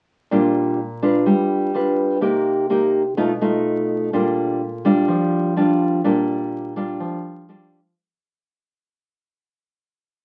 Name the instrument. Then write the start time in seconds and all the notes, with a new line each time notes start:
nylon-string guitar
0.31 A#2 G3 D4 F4
1.02 D4 F4 B4
1.26 G3
1.74 D4 F4 B4
2.21 C3 A#3 D#4 G4
2.70 A#3 D#4 G4
3.17 B2 A3 D#4 F4
3.41 A3 D#4 F4
4.13 A#2 G3 D4 F4
4.85 G3 D4 F4
5.08 F3
5.56 G3 D4 F4
6.04 A#2 G3 D4 F4
6.76 G3 D4 F4
7.00 F3
7.49 G3 D4 F4